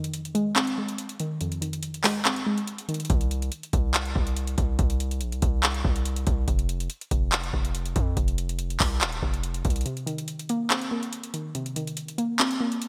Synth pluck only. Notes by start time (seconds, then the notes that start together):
Already playing: F2 D#3
0.35 G#3
0.56 C4
0.78 G#3
1.20 D#3
1.41 F2
1.61 D#3
2.04 G#3
2.25 C4
2.46 G#3
2.88 D#3
9.86 C3
10.06 D#3
10.50 A#3
10.70 C4
10.91 A#3
11.34 D#3
11.55 C3
11.76 D#3
12.18 A#3
12.40 C4
12.61 A#3